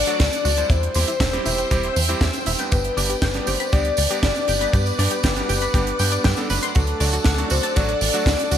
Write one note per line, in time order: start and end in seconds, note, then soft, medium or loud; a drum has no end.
0.00 0.68 A4 medium
0.00 0.16 D5 loud
0.00 0.68 D5 medium
0.00 0.68 F#5 medium
0.00 0.68 D6 medium
0.07 0.22 F#3 loud
0.07 0.22 A3 medium
0.07 0.22 D4 medium
0.07 0.22 F#4 loud
0.07 0.13 F#4 medium
0.07 closed hi-hat medium
0.07 tambourine soft
0.20 0.29 D2 loud
0.20 0.72 D5 loud
0.20 0.26 F#5 medium
0.20 kick loud
0.20 snare loud
0.20 closed hi-hat medium
0.20 tambourine soft
0.32 closed hi-hat soft
0.32 tambourine soft
0.45 0.64 D2 loud
0.45 0.55 F#4 loud
0.45 open hi-hat loud
0.45 tambourine medium
0.57 0.92 G3 medium
0.57 0.92 C4 medium
0.57 0.92 E4 medium
0.57 0.92 C5 medium
0.57 0.70 A5 medium
0.57 closed hi-hat medium
0.57 tambourine soft
0.70 0.89 E2 loud
0.70 0.80 E4 medium
0.70 2.70 C5 medium
0.70 1.45 C5 loud
0.70 2.70 E5 medium
0.70 4.69 G5 medium
0.70 2.70 E6 medium
0.70 kick loud
0.70 closed hi-hat medium
0.70 tambourine soft
0.83 closed hi-hat soft
0.94 1.05 E2 loud
0.94 1.10 G3 medium
0.94 1.10 C4 medium
0.94 1.10 E4 medium
0.94 1.10 G4 medium
0.94 1.05 C5 medium
0.94 open hi-hat loud
0.94 tambourine medium
1.08 1.14 E4 medium
1.08 closed hi-hat medium
1.08 tambourine soft
1.20 1.39 E1 loud
1.20 1.27 E5 medium
1.20 kick loud
1.20 snare loud
1.20 closed hi-hat medium
1.20 tambourine soft
1.33 1.68 G3 medium
1.33 1.68 C4 medium
1.33 1.68 E4 medium
1.33 1.68 G4 loud
1.33 closed hi-hat soft
1.46 1.65 E1 medium
1.46 1.56 E4 loud
1.46 2.43 C5 loud
1.46 open hi-hat medium
1.46 tambourine medium
1.58 1.70 G5 medium
1.58 closed hi-hat medium
1.58 tambourine soft
1.71 1.90 E1 loud
1.71 1.86 G3 loud
1.71 1.86 C4 loud
1.71 1.81 E4 medium
1.71 1.86 E4 medium
1.71 1.86 G4 loud
1.71 kick loud
1.71 closed hi-hat medium
1.71 tambourine soft
1.83 closed hi-hat soft
1.96 2.15 E2 medium
1.96 2.06 C5 medium
1.96 open hi-hat loud
1.96 tambourine medium
2.08 2.24 G3 loud
2.08 2.24 C4 medium
2.08 2.15 E4 medium
2.08 2.24 E4 medium
2.08 2.24 G4 loud
2.08 closed hi-hat medium
2.08 tambourine soft
2.21 2.31 E2 loud
2.21 2.27 E5 medium
2.21 kick loud
2.21 snare loud
2.21 closed hi-hat medium
2.21 tambourine soft
2.33 closed hi-hat soft
2.33 tambourine soft
2.46 2.56 E1 medium
2.46 2.57 E4 loud
2.46 open hi-hat loud
2.46 tambourine medium
2.59 2.94 G3 medium
2.59 2.94 B3 medium
2.59 2.94 D4 medium
2.59 2.94 B4 medium
2.59 2.71 G5 medium
2.59 closed hi-hat medium
2.59 tambourine soft
2.72 2.91 G1 loud
2.72 2.82 G4 medium
2.72 3.49 B4 loud
2.72 6.71 B4 medium
2.72 6.71 D5 medium
2.72 8.58 D6 medium
2.72 kick loud
2.72 closed hi-hat medium
2.72 tambourine soft
2.84 closed hi-hat soft
2.97 3.16 G1 loud
2.97 3.12 G3 medium
2.97 3.12 B3 medium
2.97 3.12 D4 medium
2.97 3.12 G4 medium
2.97 3.07 D5 medium
2.97 open hi-hat loud
2.97 tambourine medium
3.09 3.16 G4 medium
3.09 closed hi-hat medium
3.09 tambourine soft
3.22 3.41 G1 loud
3.22 3.28 G5 medium
3.22 kick loud
3.22 snare loud
3.22 closed hi-hat medium
3.34 3.70 G3 medium
3.34 3.70 B3 medium
3.34 3.70 D4 medium
3.34 3.70 G4 loud
3.34 closed hi-hat soft
3.47 3.57 G1 medium
3.47 3.58 G4 loud
3.47 3.72 C5 loud
3.47 open hi-hat loud
3.47 tambourine medium
3.60 3.72 B5 medium
3.60 closed hi-hat medium
3.60 tambourine soft
3.73 3.92 D2 medium
3.73 3.88 G3 loud
3.73 3.88 B3 medium
3.73 3.88 D4 medium
3.73 3.83 G4 medium
3.73 3.88 G4 loud
3.73 4.20 D5 loud
3.73 kick loud
3.73 closed hi-hat medium
3.73 tambourine soft
3.85 closed hi-hat soft
3.97 4.07 D2 medium
3.97 4.08 D5 medium
3.97 open hi-hat loud
3.97 tambourine medium
4.10 4.25 G3 loud
4.10 4.25 B3 medium
4.10 4.25 D4 medium
4.10 4.17 G4 medium
4.10 4.25 G4 loud
4.10 closed hi-hat medium
4.10 tambourine soft
4.23 4.32 G1 loud
4.23 4.75 D5 loud
4.23 4.29 G5 medium
4.23 kick loud
4.23 snare loud
4.23 closed hi-hat medium
4.23 tambourine soft
4.36 closed hi-hat soft
4.36 tambourine soft
4.48 4.67 G1 loud
4.48 4.58 G4 loud
4.48 open hi-hat medium
4.48 tambourine medium
4.61 4.96 G3 medium
4.61 4.96 B3 medium
4.61 4.96 D4 medium
4.61 4.96 B4 medium
4.61 4.73 B5 medium
4.61 closed hi-hat medium
4.61 tambourine soft
4.73 4.92 G2 loud
4.73 4.84 G4 medium
4.73 5.49 B4 loud
4.73 6.73 F#5 medium
4.73 kick loud
4.73 closed hi-hat medium
4.73 tambourine soft
4.86 closed hi-hat soft
4.86 tambourine soft
4.99 5.08 G2 loud
4.99 5.14 G3 medium
4.99 5.14 B3 medium
4.99 5.14 D4 medium
4.99 5.14 G4 loud
4.99 5.09 D5 medium
4.99 open hi-hat loud
4.99 tambourine medium
5.11 5.17 G4 medium
5.11 closed hi-hat medium
5.11 tambourine soft
5.23 5.43 G1 loud
5.23 5.30 G5 medium
5.23 kick loud
5.23 snare loud
5.23 closed hi-hat medium
5.23 tambourine soft
5.37 5.71 G3 medium
5.37 5.71 B3 medium
5.37 5.71 D4 medium
5.37 5.71 G4 medium
5.37 closed hi-hat soft
5.37 tambourine soft
5.49 5.68 G1 loud
5.49 5.59 G4 loud
5.49 6.46 B4 medium
5.49 open hi-hat loud
5.49 tambourine medium
5.62 5.74 B5 medium
5.62 closed hi-hat medium
5.62 tambourine soft
5.74 5.93 G1 loud
5.74 5.89 G3 loud
5.74 5.89 B3 medium
5.74 5.89 D4 medium
5.74 5.84 G4 medium
5.74 5.89 G4 loud
5.74 kick loud
5.74 closed hi-hat medium
5.74 tambourine soft
5.87 closed hi-hat soft
5.99 6.18 G2 medium
5.99 6.34 G3 medium
5.99 6.34 B3 medium
5.99 6.34 D4 medium
5.99 6.34 G4 medium
5.99 6.06 G5 loud
5.99 open hi-hat loud
5.99 tambourine medium
6.11 6.24 D5 medium
6.11 closed hi-hat medium
6.11 tambourine soft
6.24 6.34 G2 loud
6.24 6.35 G5 medium
6.24 kick loud
6.24 snare loud
6.24 closed hi-hat medium
6.24 tambourine soft
6.37 6.47 G3 medium
6.37 6.47 B3 medium
6.37 6.47 D4 medium
6.37 6.47 A4 loud
6.37 closed hi-hat soft
6.37 tambourine soft
6.50 6.59 G1 medium
6.50 6.97 F#3 medium
6.50 6.97 A3 medium
6.50 6.97 D4 medium
6.50 6.60 B4 loud
6.50 6.97 B4 medium
6.50 open hi-hat medium
6.50 tambourine medium
6.63 6.73 C6 medium
6.63 closed hi-hat medium
6.63 tambourine soft
6.75 6.94 D2 loud
6.75 6.85 F#4 medium
6.75 8.58 A4 medium
6.75 7.52 A4 loud
6.75 8.58 D5 medium
6.75 8.58 F#5 medium
6.75 kick loud
6.75 closed hi-hat medium
6.75 tambourine soft
6.87 closed hi-hat soft
7.00 7.19 D2 loud
7.00 7.15 F#3 medium
7.00 7.15 A3 medium
7.00 7.15 D4 medium
7.00 7.15 F#4 medium
7.00 7.10 D5 medium
7.00 open hi-hat loud
7.00 tambourine medium
7.12 7.19 F#4 medium
7.12 closed hi-hat medium
7.12 tambourine soft
7.24 7.44 D2 loud
7.24 7.32 F#5 medium
7.24 kick loud
7.24 snare loud
7.24 closed hi-hat medium
7.24 tambourine soft
7.38 7.73 F#3 medium
7.38 7.73 A3 medium
7.38 7.73 D4 medium
7.38 7.73 F#4 loud
7.38 closed hi-hat soft
7.50 7.60 D2 medium
7.50 7.61 F#4 loud
7.50 7.78 C5 loud
7.50 open hi-hat loud
7.50 tambourine medium
7.63 7.75 A5 medium
7.63 closed hi-hat medium
7.63 tambourine soft
7.76 7.95 A1 medium
7.76 7.91 F#3 loud
7.76 7.91 A3 medium
7.76 7.91 D4 medium
7.76 7.86 F#4 medium
7.76 7.91 F#4 loud
7.76 8.26 D5 loud
7.76 kick loud
7.76 closed hi-hat medium
7.76 tambourine soft
7.89 closed hi-hat soft
8.01 8.11 A1 medium
8.01 8.11 D5 medium
8.01 open hi-hat loud
8.01 tambourine medium
8.13 8.29 F#3 loud
8.13 8.29 A3 loud
8.13 8.29 D4 medium
8.13 8.20 F#4 medium
8.13 8.29 F#4 loud
8.13 closed hi-hat medium
8.13 tambourine soft
8.26 8.36 D2 loud
8.26 8.58 D5 loud
8.26 8.32 F#5 medium
8.26 kick loud
8.26 snare loud
8.26 closed hi-hat medium
8.26 tambourine soft
8.39 closed hi-hat soft
8.39 tambourine soft
8.51 8.58 D2 loud
8.51 8.58 F#4 loud
8.51 open hi-hat medium
8.51 tambourine medium